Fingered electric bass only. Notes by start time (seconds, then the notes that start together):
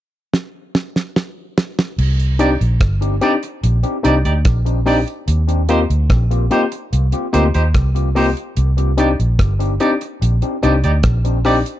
1.98 C2
2.61 A#1
2.81 G1
3.63 A#1
4.05 C2
4.25 D2
4.45 A#1
5.28 D#2
5.90 D2
6.10 A#1
6.93 C2
7.34 D2
7.55 D#2
7.75 C2
8.57 C2
9.19 A#1
9.39 G1
10.22 A#1
10.63 C2
10.84 D2
11.04 A#1